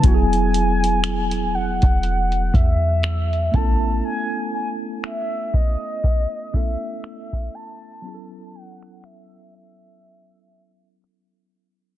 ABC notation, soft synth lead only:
X:1
M:4/4
L:1/8
Q:"Swing 16ths" 1/4=60
K:Alyd
V:1 name="Soft synth lead"
g3 f2 e2 a | g g e d2 e2 a- | a f e e4 z |]